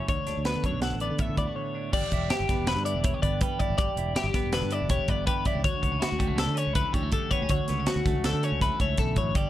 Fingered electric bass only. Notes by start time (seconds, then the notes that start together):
0.09 D2
0.28 D2
0.37 D2
0.56 D3
0.64 F#2
0.73 B1
0.93 A1
1.11 D3
1.29 D3
1.37 D2
1.93 G1
2.11 E1
2.40 G1
2.49 G1
2.59 E1
2.76 G2
2.94 E1
3.23 G1
3.70 G1
3.78 G1
3.96 E1
4.24 G1
4.34 G1
4.45 E1
4.62 G2
4.82 E1
5.09 G1
5.55 C#2
5.65 D2
5.83 C#2
6.12 D2
6.20 D2
6.30 C#2
6.47 D3
6.67 C#2
6.94 D2
7.42 D2
7.50 D2
7.70 C#2
7.96 D2
8.05 D2
8.14 C#2
8.33 D3
8.52 C#2
8.80 C#2
8.98 B1
9.16 A1
9.35 G1